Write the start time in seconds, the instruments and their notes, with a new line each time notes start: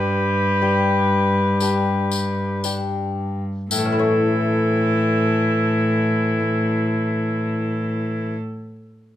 Already playing: lute G2, cello G2, trombone G3, oboe G4, viola B4
0.62 lute D4 G4
1.60 lute D4 G4, tambourine
2.11 tambourine
2.64 lute D4 G4, tambourine
3.71 cello A2, lute A2, trombone E3, oboe E4, viola A4, tambourine
3.78 lute A3
3.85 lute C#4
3.92 lute E4
3.99 lute C#5